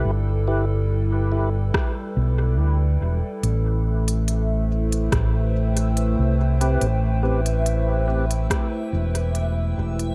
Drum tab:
HH |----------------|x--xx--xx--xx--x|x--xx--xx--xx--x|
SD |--------r-------|--------r-------|--------r-------|
BD |--------o-------|--------o-------|--------o-------|